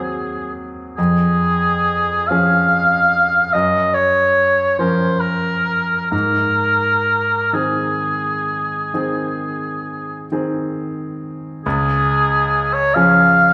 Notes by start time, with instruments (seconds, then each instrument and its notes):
Already playing: grand piano F#3 C4 G#4, oboe G#4
0.97 grand piano F2, oboe G#4
2.28 grand piano F3 C#4 G#4, oboe F5
3.53 grand piano F#2, oboe D#5
3.94 oboe C#5
4.79 grand piano F3 C#4 A#4, oboe C5
5.20 oboe A#4
6.11 grand piano G#2, oboe A#4
7.53 grand piano D#3 C4 G#4, oboe G#4
8.94 grand piano D#3 C4 G#4
10.32 grand piano D#3 C4 G#4
11.65 grand piano C#2, oboe G#4
12.73 oboe C#5
12.94 grand piano F3 C#4 G#4, oboe F5